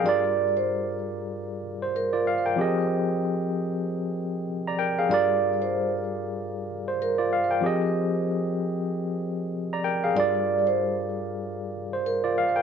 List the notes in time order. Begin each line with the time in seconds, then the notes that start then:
Already playing: G#4 F5
0.03 G2 G3 F4 A#4 D5
0.09 D5
0.57 C5
1.82 C5
1.96 A#4
2.13 F4 D5
2.27 F5
2.46 A#4 G5
2.56 F3 C4 G4 G#4
2.61 D#5
4.67 D5 A#5
4.79 A#4 G5
4.99 G#4 F5
5.09 G2 G3 F4 D5
5.13 A#4 D5
5.62 C5
6.88 C5
7.02 A#4
7.18 F4 D5
7.33 F5
7.51 A#4 G5
7.61 F3 C4 G4 G#4
7.66 D#5
9.73 D5 A#5
9.84 A#4 G5
10.04 G#4 F5
10.14 G2 G3 F4 A#4 D5
10.20 D5
10.67 C5
11.93 C5
12.06 A#4
12.24 F4 D5
12.38 F5
12.56 A#4 G5